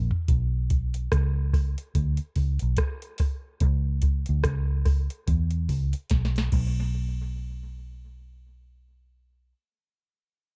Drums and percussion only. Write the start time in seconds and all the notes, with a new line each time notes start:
0.11 floor tom
0.28 kick, closed hi-hat
0.70 kick, closed hi-hat
0.94 closed hi-hat
1.12 kick, cross-stick, closed hi-hat
1.53 kick, open hi-hat
1.78 closed hi-hat
1.95 kick, closed hi-hat
2.17 closed hi-hat
2.36 kick, open hi-hat
2.59 closed hi-hat
2.77 kick, cross-stick, closed hi-hat
3.02 closed hi-hat
3.18 kick, open hi-hat
3.60 kick, closed hi-hat
4.02 kick, closed hi-hat
4.26 closed hi-hat
4.44 kick, cross-stick, closed hi-hat
4.86 kick, open hi-hat
5.10 closed hi-hat
5.28 kick, closed hi-hat
5.51 closed hi-hat
5.69 kick, open hi-hat
5.93 closed hi-hat
6.10 kick, snare, closed hi-hat
6.25 snare
6.36 snare, closed hi-hat
6.52 kick, crash